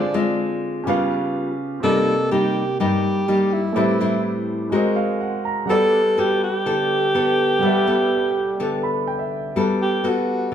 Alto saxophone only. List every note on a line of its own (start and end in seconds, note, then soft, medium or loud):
0.00 0.62 D4 medium
1.83 2.28 A4 loud
2.31 2.76 G4 medium
2.80 3.55 G4 medium
3.53 4.49 E4 medium
5.70 6.21 A4 loud
6.20 6.43 G4 medium
6.44 9.04 G4 medium
9.82 10.10 G4 medium
10.08 10.54 F#4 medium